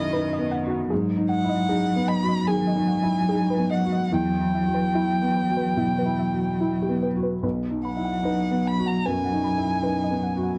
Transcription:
Already playing: F#2 D#3 B3 D#4 E4 F#4 D#5
0.13 D#4 B4
0.33 D#5
0.39 B3
0.51 F#5
0.66 F#4
0.70 F#5
0.89 G#2 F#3 G#4
1.17 D#4
1.29 F#5
1.44 E4
1.49 D#5
1.69 D#4 G#4
1.96 B3
2.08 D#5 B5
2.22 F#4
2.28 D#5
2.47 D#3 G#4 G#5
2.67 D#5
2.76 D#4
2.88 F#5
3.02 E4
3.29 D#4 G#4
3.50 B4
3.58 B3
3.71 D#5 F#5
3.85 F#4
3.92 D#5
4.12 E2 E4 G5
4.39 E4
4.55 E5
4.66 F#4
4.74 B4
4.95 E4
5.22 B3
5.36 B4
5.49 F#3
5.57 B4
5.76 B2 E4
5.99 B4
6.05 E4
6.19 E5
6.33 F#4
6.61 E4
6.82 G4
6.89 B3
7.03 B4
7.16 F#4
7.23 B4
7.43 B1 F#3 B4
7.70 D#4
7.85 F#5 B5
7.97 E4
8.05 F#5
8.23 D#4 B4
8.51 B3
8.65 F#5 B5
8.78 F#4
8.86 F#5 A#5
9.06 F#2 B4 G#5
9.25 F#5
9.32 D#4
9.44 B5
9.58 E4
9.83 D#4 B4
10.04 D#5
10.11 B3
10.23 F#5
10.36 F#4
10.43 F#5

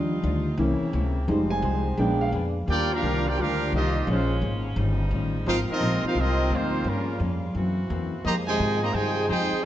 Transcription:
Already playing: D#2 D#3 F3 G3 D4 D#4 F4
0.22 D2 D#3 G3 D4 F4
0.56 C2 C3 C#3 E3 A#3 C4 C#4 E4
0.61 C#4 E4
0.81 muted upright bass stroke
0.92 C#2 C3 A#3 C#4 E4
1.27 F1 D#3 F3 G3 G#3 D#4 F4 G#4
1.31 C5
1.50 G#5
1.62 C2 F3 D#4 G#4 C5
1.97 A#1 B2 G#3 A#3 B3 D4 G#4 G5
2.01 B4
2.21 F5
2.32 F2 A#3 D4 G#4 B4
2.66 D#2 A#2 D#3 F3 G3 A#3 D4 F4 G4 A#4 G5
2.70 F4 D5
2.92 A#3 D4 F4 G4 A#4 F5
3.02 C2 D#3 G3 D4 F4
3.28 A#3 D4 F4 G4 A#4 D5 G5
3.37 D2 D#3 G3 A#3 D4 F4 G4 A#4 F5
3.42 F4
3.72 C2 D#3 G3 A#3 D4 D#4 F4 G4 D#5
4.07 A#1 C#3 F3 G#3 A#3 C#4 F4 G#4 C5
4.42 G#1 A#3 C#4 G#4 C5
4.76 G1 C#3 D#3 F3 G3 C#4 D#4
4.81 F4
5.11 A1 D#3 G3 C#4
5.15 F4
5.46 G#1 G#2 C3 F3 G#3 A#3 C4 D#4 F4 A#4 C5 F5
5.69 F3 C4 D#4 F4 A#4 D#5, muted upright bass stroke
5.81 A#1 G#2 F3 A#3 C4
6.03 F3 C4 D#4 F4 A#4 C5 F5, muted upright bass stroke
6.15 C2 G#2 F3 A#3 C4 D#4 F4 D#5
6.19 C4 A#4
6.50 D2 G#2 F3 A#3 C4 D#4
6.54 A#3 D#4 F4 C5
6.84 G2 C#3 F3 G3 A#3 C#4 F4 A#4
6.89 C#4
7.20 F2 G2 F3 A#3 C#4
7.55 F#2 E3 A#3 C4 F#4
7.90 E2 F#2 E3 A#3 C4
8.24 F2 F3 G#3 A#3 D#4 F4 G4 G#4 C5 D#5 A#5
8.47 C3 D#3 G#3 D#4 C5 G5 G#5
8.59 G#2 F3 G#3 D#4 G4
8.82 A#3 G4 C5 D#5 A#5
8.93 G2 C3 D#3 F3 G#3 D#4 G4 G#4 C5 G5 G#5
9.28 F2 F3 G#3 C4 D#4 G4 G#4 C5 G5
9.52 muted upright bass stroke

